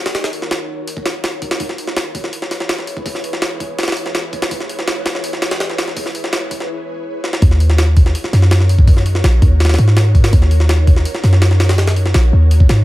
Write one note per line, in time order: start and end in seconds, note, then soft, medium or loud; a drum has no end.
0.00 1.56 D#4 medium
0.00 1.56 F#4 medium
0.00 1.56 A#4 medium
0.00 1.56 C#5 medium
0.06 snare loud
0.06 open hi-hat medium
0.15 snare loud
0.15 open hi-hat medium
0.24 snare loud
0.24 open hi-hat medium
0.33 open hi-hat medium
0.42 snare medium
0.51 snare loud
0.51 open hi-hat medium
0.88 open hi-hat medium
0.97 kick medium
1.06 snare loud
1.06 open hi-hat medium
1.24 snare loud
1.24 open hi-hat medium
1.42 kick medium
1.42 open hi-hat medium
1.51 snare loud
1.51 open hi-hat medium
1.60 7.38 E4 medium
1.60 7.38 G#4 medium
1.60 7.38 B4 medium
1.60 7.38 C#5 medium
1.60 kick loud
1.60 open hi-hat medium
1.69 snare soft
1.78 open hi-hat medium
1.87 snare medium
1.97 snare loud
1.97 open hi-hat medium
2.15 kick medium
2.15 open hi-hat medium
2.24 snare medium
2.33 open hi-hat medium
2.42 snare medium
2.51 snare medium
2.51 open hi-hat medium
2.60 snare medium
2.69 snare loud
2.69 open hi-hat medium
2.79 snare soft
2.87 open hi-hat medium
2.97 kick loud
3.06 kick loud
3.06 open hi-hat medium
3.15 snare soft
3.24 open hi-hat medium
3.33 snare medium
3.42 snare loud
3.42 open hi-hat medium
3.60 kick medium
3.60 open hi-hat medium
3.79 snare medium
3.79 open hi-hat medium
3.83 snare medium
3.83 open hi-hat medium
3.88 snare medium
3.88 open hi-hat medium
3.92 snare medium
3.92 open hi-hat medium
3.97 open hi-hat medium
4.06 snare medium
4.15 snare loud
4.15 open hi-hat medium
4.33 kick medium
4.33 open hi-hat medium
4.42 snare loud
4.42 open hi-hat medium
4.51 kick loud
4.51 open hi-hat medium
4.60 snare soft
4.69 open hi-hat medium
4.79 snare medium
4.88 snare loud
4.88 open hi-hat medium
5.06 snare loud
5.06 open hi-hat medium
5.15 snare medium
5.24 open hi-hat medium
5.33 snare medium
5.42 snare loud
5.42 open hi-hat medium
5.51 snare loud
5.51 open hi-hat medium
5.60 snare loud
5.60 open hi-hat medium
5.70 snare soft
5.78 snare loud
5.78 open hi-hat medium
5.88 snare soft
5.97 kick loud
5.97 open hi-hat medium
6.06 snare soft
6.15 open hi-hat medium
6.24 snare medium
6.33 snare loud
6.33 open hi-hat medium
6.51 kick loud
6.51 open hi-hat medium
6.60 snare soft
7.24 snare medium
7.33 snare medium
7.42 8.13 D#2 loud
7.42 12.84 D#4 medium
7.42 12.84 F#4 medium
7.42 12.84 A#4 medium
7.42 12.84 C#5 medium
7.42 kick loud
7.42 open hi-hat medium
7.51 snare soft
7.60 open hi-hat medium
7.70 snare medium
7.78 snare loud
7.78 open hi-hat medium
7.97 kick medium
7.97 open hi-hat medium
8.06 snare medium
8.15 open hi-hat medium
8.24 snare medium
8.33 9.22 F#2 medium
8.33 snare medium
8.33 open hi-hat medium
8.42 snare medium
8.51 snare loud
8.51 open hi-hat medium
8.60 snare soft
8.69 open hi-hat medium
8.79 kick loud
8.88 kick loud
8.88 open hi-hat medium
8.97 snare soft
9.06 open hi-hat medium
9.15 snare medium
9.24 9.40 A#1 medium
9.24 snare loud
9.24 open hi-hat medium
9.42 9.77 D#2 medium
9.42 kick medium
9.42 open hi-hat medium
9.60 snare medium
9.60 open hi-hat medium
9.65 snare medium
9.65 open hi-hat medium
9.69 snare medium
9.69 open hi-hat medium
9.74 snare medium
9.74 open hi-hat medium
9.79 10.32 G#2 medium
9.79 open hi-hat medium
9.88 snare medium
9.97 snare loud
9.97 open hi-hat medium
10.15 kick medium
10.15 open hi-hat medium
10.24 snare loud
10.24 open hi-hat medium
10.33 11.04 D#2 loud
10.33 kick loud
10.33 open hi-hat medium
10.42 snare soft
10.51 open hi-hat medium
10.60 snare medium
10.69 snare loud
10.69 open hi-hat medium
10.87 kick medium
10.87 open hi-hat medium
10.96 snare medium
11.05 open hi-hat medium
11.15 snare medium
11.24 12.13 F#2 medium
11.24 snare medium
11.24 open hi-hat medium
11.33 snare medium
11.42 snare loud
11.42 open hi-hat medium
11.51 snare soft
11.60 snare loud
11.60 open hi-hat medium
11.69 snare loud
11.69 open hi-hat medium
11.78 snare loud
11.78 open hi-hat medium
11.87 snare loud
11.87 open hi-hat medium
11.96 open hi-hat medium
12.06 snare medium
12.14 12.31 A#1 medium
12.14 snare loud
12.14 open hi-hat medium
12.33 12.68 D#2 medium
12.51 open hi-hat medium
12.60 kick medium
12.69 12.84 G#2 medium
12.69 snare loud
12.69 open hi-hat medium